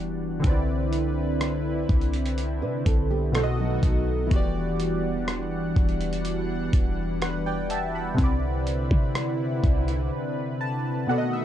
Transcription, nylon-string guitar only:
2.62 D4 B4
2.86 C4 A4
3.10 B3 G4
3.35 A3 F#4
3.59 F#3 D#4

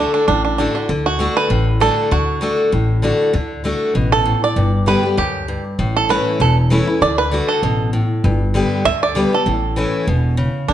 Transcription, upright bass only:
0.28 A1
0.89 D2
1.50 A1
2.11 D2
2.73 A1
3.34 D2
3.95 A1
4.56 G1
5.17 D2
5.79 A1
6.40 E1
7.01 D2
7.63 A1
8.24 G1
8.85 D2
9.46 A1
10.07 E1
10.69 D2

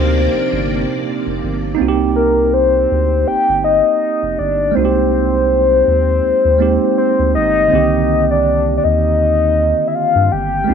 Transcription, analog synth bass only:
Already playing: D2
0.32 G1
0.53 G1
1.27 F1
1.44 G1
1.80 C2
2.91 D2
3.29 G1
3.49 G1
4.23 F1
4.40 G1
4.77 C2
5.88 D#2
6.25 D#2
6.45 D#2
7.19 D2
7.36 G1
7.73 C2
8.84 D#2
10.16 G2
10.33 G1
10.69 C2

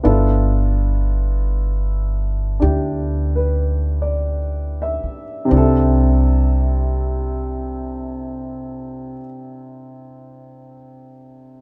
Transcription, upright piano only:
0.03 B3 D4 E4 F4 A4
2.60 D4 E4 G4
3.36 B4
4.02 D5
4.82 E5
5.45 C3 C4
5.51 D4 E4
5.57 A4

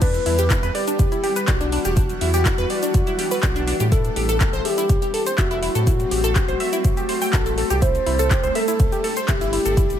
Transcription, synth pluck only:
0.02 D4
0.26 E4
0.39 G4
0.50 E4
0.63 B4
0.75 D5
0.88 D4
1.12 E4
1.24 G4
1.36 B4
1.48 D5
1.61 D4
1.72 D4
1.85 G4
1.97 D4
2.21 E4
2.34 G4
2.46 E4
2.58 B4
2.70 D5
2.83 D4
3.07 E4
3.19 G4
3.31 B4
3.43 D5
3.56 D4
3.67 D4
3.80 G4
3.92 E4
4.16 G4
4.29 A4
4.41 G4
4.53 C5
4.65 E5
4.78 E4
5.02 G4
5.14 A4
5.26 C5
5.38 E5
5.51 E4
5.63 E4
5.75 A4
5.87 E4
6.11 G4
6.24 A4
6.36 G4
6.48 C5
6.60 E5
6.73 E4
6.97 G4
7.09 C5
7.22 G5
7.33 A4
7.46 A4
7.58 A4
7.70 G4
7.82 E4
8.06 E4
8.19 A4
8.31 G4
8.44 C5
8.55 E5
8.68 E4
8.92 G4
9.04 A4
9.17 C5
9.28 E5
9.41 E4
9.53 E4
9.65 A4
9.77 E4

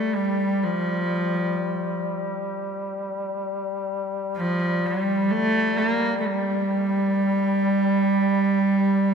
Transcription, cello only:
Already playing: A3
0.15 G3
0.64 F3
4.37 F3
4.86 G3
5.31 A3
5.78 A#3
6.20 A3
6.27 G3

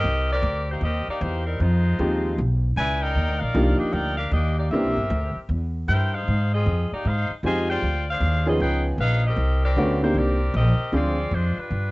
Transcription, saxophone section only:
Already playing: C4 G4 A#4 D#5
0.33 C4 G4 A#4 D5
0.72 A#3 D#4 G4 C5
0.84 C4 G4 A#4 D#5
1.09 A#3 D#4 G4 D5
1.22 A#3 D#4 G4 C5
1.45 G3 C4 D#4 A#4
1.61 G#3 D#4 F4 C5
2.77 E4 B4 D5 G#5
3.02 D#4 A#4 D5 G5
3.40 D#4 A#4 D5 F5
3.78 A#3 D4 G4 D#5
3.93 D#4 A#4 D5 G5
4.18 D4 G4 A#4 F5
4.33 A#3 D4 G4 D#5
4.58 A#3 D#4 G4 D5
4.71 C4 G4 A#4 E5
5.89 E4 A#4 C5 G5
6.14 D#4 G#4 C5 F5
6.54 C4 F4 G#4 D#5
6.94 A#3 D#4 G4 D5
7.07 D#4 G#4 C5 F5
7.46 F4 C5 D#5 G#5
7.70 F4 C5 D5 G5
8.11 D4 G#4 C5 F5
8.49 C4 F4 G#4 D#5
8.61 D#4 G#4 B4 G5
9.01 D#4 G#4 B4 F5
9.27 C4 G4 A#4 D#5
9.64 C4 G4 A#4 D5
10.04 A#3 D#4 G4 C5
10.17 C4 G4 A#4 D5
10.56 C4 G4 A#4 D#5
10.95 C4 F4 G#4 D5
11.34 G#3 D4 F4 C5
11.59 G3 D4 F4 B4

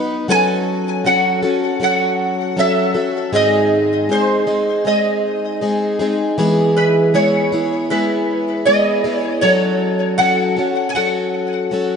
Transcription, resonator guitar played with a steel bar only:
0.30 G#5
1.06 F#5
1.83 F#5
2.59 E5
3.35 D#5
4.12 C5
4.87 D#5
6.77 B4
7.15 C#5
7.90 B4
8.65 D#5
9.19 C#5
9.41 C#5
10.18 F#5
10.89 G#5
10.95 F#5

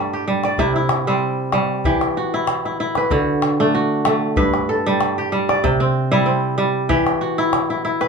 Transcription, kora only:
Already playing: G2 G3 A3 D4 A4 B4
0.13 G4
0.28 G3
0.45 D5
0.59 C3 E4
0.76 E4
1.07 G3 C4
1.53 G3
1.85 E3 G4
2.17 F#4
2.34 E4
2.65 E4
2.80 E4
2.97 B4
3.11 D3 F#4
3.60 A3 D4
3.75 F#4
4.06 A3
4.37 G2 B4
4.69 A4
4.86 G3
5.18 G4
5.32 G3
5.49 D5
5.64 C3
5.80 C4
6.12 G3 E4
6.26 C4
6.58 G3
6.89 E3 G4
7.21 F#4
7.38 E4
7.70 E4
7.85 E4
8.01 B4

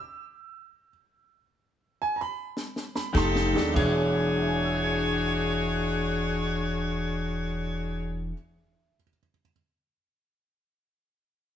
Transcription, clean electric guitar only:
3.13 F3 A3 D#4 G4
3.74 E3 D4 G#4
3.78 C#5

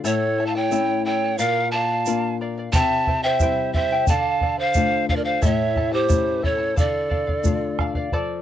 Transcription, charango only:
0.04 E4 A4 C#5 E5 A5
0.38 E4 A4 E5 A5
0.55 E4 A4 A5
0.71 E4 A4 E5 A5
1.06 E4 A4 E5 A5
1.24 E4 A4 A5
1.39 A#4 D5 F5
1.73 A#4 D5 F5
1.90 D5 F5
2.06 A#4 D5 F5
2.41 A#4 D5 F5
2.58 D5 F5
2.74 E4 G4 C5 E5 G5
3.07 E4 C5 E5 G5
3.24 E4 C5 G5
3.41 E4 C5 E5 G5
3.75 E4 C5 E5 G5
3.92 E4 C5 G5
4.09 A4 D5 F5
4.42 A4 D5 F5
4.58 D5 F5
4.75 A4 D5 F5
5.09 A4 D5 F5
5.26 D5 F5
5.42 E4 A4 C#5 E5 A5
5.76 E4 A4 E5 A5
5.92 E4 A4 A5
6.08 E4 A4 E5 A5
6.42 E4 A4 E5 A5
6.59 E4 A4 A5
6.76 A4 D5 F5
7.09 A4 D5 F5
7.27 D5 F5
7.45 A4 D5 F5
7.79 A4 D5 F5
7.95 D5 F5
8.13 A4 D5

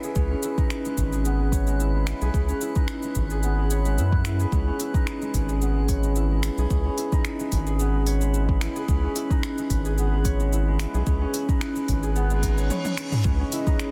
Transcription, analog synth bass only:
0.16 C#2
0.98 G#1
2.22 B1
2.34 C#2
3.16 G#1
3.98 F#2
4.52 C#2
5.34 G#1
6.58 B1
6.71 C#2
7.53 G#1
8.89 C#2
9.70 G#1
10.94 B1
11.07 C#2
11.89 G#1
13.25 C#2

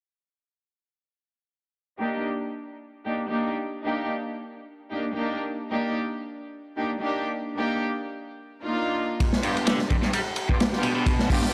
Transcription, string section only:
1.99 A#3 D4 D#4 G4
3.05 A#3 D4 D#4 G4
3.28 A#3 D4 D#4 G4
3.85 A#3 D4 D#4 G4
4.91 A#3 D4 D#4 G4
5.14 A#3 D4 D#4 G4
5.71 A#3 D4 D#4 G4
6.76 A#3 D4 D#4 G4
7.00 A#3 D4 D#4 G4
7.57 A#3 D4 D#4 G4
8.63 A#3 D4 D#4 F4
9.43 B3 D4 F4 G4
10.49 B3 D4 F4 G4
10.72 B3 D4 F4 G4
11.29 B3 D4 F4 G4

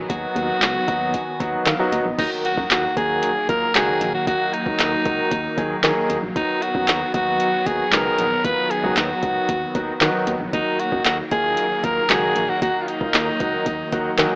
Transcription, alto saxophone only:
0.10 F#4
2.19 D#4
2.45 F#4
2.71 F#4
2.97 G#4
3.49 A#4
3.75 G#4
4.14 F#4
4.27 F#4
4.53 D#4
6.36 D#4
6.62 F#4
7.14 F#4
7.66 G#4
7.92 A#4
8.45 B4
8.71 G#4
8.97 F#4
10.53 D#4
10.79 F#4
11.06 F#4
11.32 G#4
11.84 A#4
12.10 G#4
12.49 F#4
12.62 F#4
12.81 F4
12.88 D#4

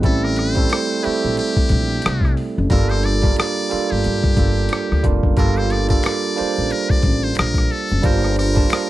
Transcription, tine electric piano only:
0.02 G3 A3 C4 E4 A4
0.55 G3 A3 C4 E4 A4
1.03 G3 A3 C4 E4 A4
2.70 G3 A#3 D4 F4 A4
3.22 G3 A#3 D4 F4 A#4
3.69 G3 A#3 D4 F4 A4
4.36 G3 A#3 D4 F4 A4
5.03 G3 A#3 D4 F4 G4
5.37 G3 A#3 D4 F4 A4
5.88 G3 A#3 D4 F4 A4
6.36 G3 A#3 D4 F4 C5
8.03 G3 A#3 D4 F4 C5
8.54 G3 A#3 D4 F4 A5

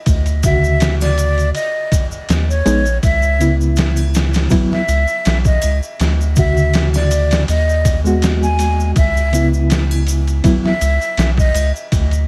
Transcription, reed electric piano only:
0.43 C#3 D3 F#4
2.66 G#3 B3 D#4
3.39 C#3 B3 E4
4.50 F#3 B3 E4
6.36 C#3 D3 F#4
8.04 G#3 B3 F#4
9.32 C#3 B3 E4
10.43 F#3 B3 E4

